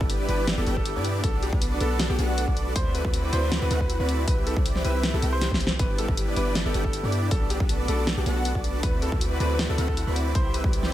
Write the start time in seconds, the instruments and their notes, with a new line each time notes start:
Already playing: string section G3 D4 E4 B4, harp E4 A4 B4 E5
0.01 808-style bass G1, supersaw synth B3 D4 E4 G4 B4, harp D5, kick
0.10 harp G4, closed hi-hat
0.20 harp D5
0.29 808-style bass G1, supersaw synth B3 D4 E4 G4 D5, grand piano B4, harp B4, closed hi-hat
0.39 harp E4
0.47 harp E4, snare, closed hi-hat
0.58 808-style bass G1, supersaw synth B3 D4 E4 G4 D5, harp G4, grand piano A4
0.66 808-style bass G1, supersaw synth B3 D4 E4 G4 G5, harp B4, closed hi-hat
0.77 grand piano A4, harp D5, kick
0.86 harp G4, closed hi-hat
0.96 808-style bass G2, supersaw synth B3 D4 E4 G4 D5, harp D5
1.04 harp B4, closed hi-hat
1.15 harp E4
1.23 808-style bass B1, string section A3 B3, supersaw synth B3 D4 F#4 A4 D5, harp F#4, grand piano A4, kick, closed hi-hat
1.34 harp A4
1.43 grand piano G4, harp B4, closed hi-hat
1.53 808-style bass B1, supersaw synth B3 D4 F#4 A4 B4, harp D5, kick
1.62 harp A4, closed hi-hat
1.72 harp D5
1.80 808-style bass B1, supersaw synth B3 D4 F#4 A4 D5, grand piano A4, harp B4, closed hi-hat
1.91 harp F#4
2.00 harp F#4, snare, closed hi-hat
2.09 808-style bass B1, supersaw synth B3 D4 F#4 A4 D5, grand piano G4, harp A4
2.18 808-style bass B1, supersaw synth B3 D4 F#4 A4 F#5, harp B4, closed hi-hat
2.28 grand piano F#4, harp D5
2.38 harp A4, closed hi-hat
2.47 808-style bass B1, supersaw synth B3 D4 F#4 A4 D5, harp D5, kick
2.56 harp B4, closed hi-hat
2.66 harp F#4
2.75 808-style bass D2, string section D3 C4 E4 F#4 B4, supersaw synth C4 E4 F#4 B4 D5, grand piano C5, kick, closed hi-hat
2.86 harp F#4
2.95 harp A4, grand piano B4, closed hi-hat
3.04 808-style bass D2, supersaw synth C4 E4 F#4 B4 D5, harp B4, kick
3.14 harp F#4, closed hi-hat
3.24 harp B4
3.32 808-style bass D2, supersaw synth C4 E4 F#4 B4 D5, harp A4, grand piano C5, closed hi-hat
3.43 harp E4
3.52 harp E4, snare, closed hi-hat
3.61 808-style bass D2, supersaw synth C4 E4 F#4 B4 D5, harp F#4, grand piano B4
3.71 808-style bass D2, supersaw synth C4 E4 F#4 B4 F#5, harp A4, closed hi-hat
3.81 grand piano B4, harp B4, kick
3.90 harp F#4, closed hi-hat
3.99 808-style bass D2, supersaw synth C4 E4 F#4 B4 D5, harp B4
4.09 harp A4, closed hi-hat
4.19 harp E4
4.28 808-style bass C2, string section C3 G3, supersaw synth C4 E4 G4 B4 E5, grand piano B4, kick, closed hi-hat
4.38 harp G4
4.47 grand piano A4, harp B4, closed hi-hat
4.56 808-style bass C2, supersaw synth C4 E4 G4 B4 D5, harp C5, kick
4.66 harp G4, closed hi-hat
4.76 harp C5, snare
4.84 808-style bass C2, supersaw synth C4 E4 G4 B4 E5, harp B4, grand piano B4, closed hi-hat
4.95 harp E4
5.03 harp E4, snare, closed hi-hat
5.14 808-style bass C2, supersaw synth C4 E4 G4 B4 E5, harp G4, grand piano A4
5.22 808-style bass C2, supersaw synth C4 E4 G4 B4 G5, harp B4, closed hi-hat
5.32 harp C5, grand piano C5
5.41 harp G4, snare, closed hi-hat
5.51 808-style bass C2, supersaw synth C4 E4 G4 B4 G5, harp C5, kick, snare
5.61 harp B4, closed hi-hat
5.67 harp E4, snare
5.79 808-style bass G1, supersaw synth B3 D4 E4 G4 D5, string section D4 E4 B4, harp E4, grand piano B4, kick, closed hi-hat
5.90 harp G4
5.98 grand piano A4, harp B4, closed hi-hat
6.08 808-style bass G1, supersaw synth B3 D4 E4 G4 B4, harp G4, kick
6.17 harp G4, closed hi-hat
6.28 harp D5
6.36 808-style bass G1, supersaw synth B3 D4 E4 G4 D5, grand piano B4, harp B4, closed hi-hat
6.46 harp E4
6.55 harp E4, snare, closed hi-hat
6.65 808-style bass G1, supersaw synth B3 D4 E4 G4 D5, harp G4, grand piano A4
6.74 808-style bass G1, supersaw synth B3 D4 E4 G4 G5, harp B4, closed hi-hat
6.84 harp G4, grand piano A4, kick
6.93 harp G4, closed hi-hat
7.03 808-style bass G2, supersaw synth B3 D4 E4 G4 D5, harp D5
7.12 harp B4, closed hi-hat
7.22 harp E4
7.31 808-style bass B1, string section A3 B3, supersaw synth B3 D4 F#4 A4 D5, harp F#4, grand piano A4, kick, closed hi-hat
7.41 harp A4
7.50 grand piano G4, harp B4, closed hi-hat
7.60 808-style bass B1, supersaw synth B3 D4 F#4 A4 B4, kick
7.69 harp A4, closed hi-hat
7.79 harp D5
7.88 808-style bass B1, supersaw synth B3 D4 F#4 A4 D5, grand piano A4, harp B4, closed hi-hat
7.98 harp F#4
8.07 harp F#4, snare, closed hi-hat
8.17 808-style bass B1, supersaw synth B3 D4 F#4 A4 D5, grand piano G4, harp A4
8.26 808-style bass B1, supersaw synth B3 D4 F#4 A4 F#5, harp B4, closed hi-hat
8.36 grand piano F#4, harp A4
8.45 harp A4, closed hi-hat
8.55 808-style bass B1, supersaw synth B3 D4 F#4 A4 D5, harp D5, kick
8.64 harp B4, closed hi-hat
8.74 harp F#4
8.83 808-style bass D2, string section D3 C4 E4 F#4 B4, supersaw synth C4 E4 F#4 B4 D5, harp E4, grand piano B4, kick, closed hi-hat
8.93 harp F#4
9.02 grand piano A4, harp A4, closed hi-hat
9.12 808-style bass D2, supersaw synth C4 E4 F#4 B4 D5, harp F#4, kick
9.21 harp F#4, closed hi-hat
9.31 harp B4
9.40 808-style bass D2, supersaw synth C4 E4 F#4 B4 D5, harp A4, grand piano B4, closed hi-hat
9.50 harp E4
9.59 harp E4, snare, closed hi-hat
9.69 808-style bass D2, supersaw synth C4 E4 F#4 B4 D5, harp F#4, grand piano A4
9.78 808-style bass D2, supersaw synth C4 E4 F#4 B4 F#5, harp A4, closed hi-hat
9.88 grand piano A4, kick
9.97 harp F#4, closed hi-hat
10.07 808-style bass D2, supersaw synth C4 E4 F#4 B4 D5, harp B4
10.16 harp A4, closed hi-hat
10.26 harp E4
10.35 808-style bass C2, string section C3 G3, supersaw synth C4 E4 G4 B4 E5, harp E4, grand piano C5, kick, closed hi-hat
10.45 harp G4
10.54 harp B4, grand piano B4, closed hi-hat
10.64 808-style bass C2, supersaw synth C4 E4 G4 B4 D5, harp G4, kick
10.73 harp G4, closed hi-hat
10.83 harp C5, snare